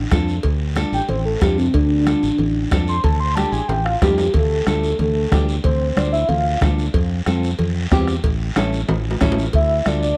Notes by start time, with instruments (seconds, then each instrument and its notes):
0.11 fingered electric bass F2, nylon-string guitar D4 F4 A4, bombo low, bombo rim, cowbell, high conga, low timbale, short guiro
0.28 short guiro
0.43 fingered electric bass D2, bombo low, cowbell, high conga, long guiro
0.76 nylon-string guitar D4 F4 A4, bombo rim, cowbell, high conga, short guiro
0.92 fingered electric bass A1, soft synth lead G5, short guiro
1.09 fingered electric bass A1, soft synth lead C5, cowbell, high conga, low conga, long guiro
1.25 soft synth lead A4
1.41 fingered electric bass F2, nylon-string guitar D4 F4 A4, soft synth lead G4, bombo low, bombo rim, cowbell, high conga, low timbale, short guiro
1.58 soft synth lead C4, short guiro
1.74 fingered electric bass D2, soft synth lead D4, bombo low, cowbell, high conga, long guiro
2.06 nylon-string guitar D4 F4 A4, bombo rim, cowbell, high conga, short guiro
2.23 fingered electric bass A1, short guiro
2.38 fingered electric bass A1, cowbell, high conga, low conga, long guiro
2.71 fingered electric bass F2, nylon-string guitar D4 F4 A4, bombo low, bombo rim, cowbell, high conga, low timbale, short guiro
2.88 soft synth lead C6, short guiro
3.04 fingered electric bass D2, soft synth lead A5, bombo low, cowbell, high conga, low conga, long guiro
3.20 soft synth lead C6
3.35 nylon-string guitar D4 F4 G4, soft synth lead A5, bombo rim, cowbell, high conga, short guiro
3.52 fingered electric bass A1, soft synth lead G#5, short guiro
3.68 fingered electric bass A1, soft synth lead G5, cowbell, high conga, low conga, high timbale, long guiro
3.85 soft synth lead F5, bombo rim
4.02 fingered electric bass F2, nylon-string guitar D4 F4 G4, soft synth lead G4, bombo low, bombo rim, cowbell, high conga, low timbale, short guiro
4.18 low timbale, short guiro
4.34 fingered electric bass D2, soft synth lead A4, bombo low, cowbell, high conga, low conga, long guiro
4.67 fingered electric bass D2, nylon-string guitar D4 F4 A4, soft synth lead A4, bombo rim, high conga, short guiro
4.83 short guiro
4.99 fingered electric bass D2, soft synth lead A4, cowbell, high conga, low conga, long guiro
5.32 fingered electric bass D2, nylon-string guitar D4 F4 G4, bombo low, bombo rim, high conga, low conga, low timbale, short guiro
5.49 short guiro
5.64 fingered electric bass D2, soft synth lead C5, bombo low, cowbell, high conga, low conga, long guiro
5.96 fingered electric bass D2, nylon-string guitar D4 F4 C5, soft synth lead D5, bombo rim, high conga, short guiro
6.13 soft synth lead E5, short guiro
6.29 fingered electric bass D2, soft synth lead F5, cowbell, high conga, low conga, long guiro
6.61 fingered electric bass D2, nylon-string guitar D4 F4 A4, bombo low, bombo rim, high conga, low conga, low timbale, short guiro
6.78 short guiro
6.94 fingered electric bass F2, bombo low, cowbell, high conga, long guiro
7.26 fingered electric bass F2, nylon-string guitar C4 F4 A4, bombo rim, high conga, short guiro
7.43 short guiro
7.59 fingered electric bass F2, cowbell, high conga, low conga, long guiro
7.91 fingered electric bass E2, nylon-string guitar C4 F4 G4, bombo low, bombo rim, high conga, low timbale, short guiro
8.08 bombo rim, short guiro
8.24 fingered electric bass A1, bombo low, cowbell, high conga, long guiro
8.56 fingered electric bass A1, nylon-string guitar C#4 E4 A4, bombo rim, high conga, high timbale, short guiro
8.73 short guiro
8.89 fingered electric bass A1, cowbell, high conga, low conga, low timbale, long guiro
9.11 low timbale
9.21 fingered electric bass A1, nylon-string guitar C#4 E4 A4, bombo low, bombo rim, high conga, low conga, low timbale, short guiro
9.32 low timbale
9.38 short guiro
9.43 low timbale
9.53 fingered electric bass D2, soft synth lead E5, bombo low, cowbell, high conga, long guiro
9.86 fingered electric bass D2, nylon-string guitar D4 F4 A4, soft synth lead D5, bombo rim, high conga, short guiro
10.03 soft synth lead D5, short guiro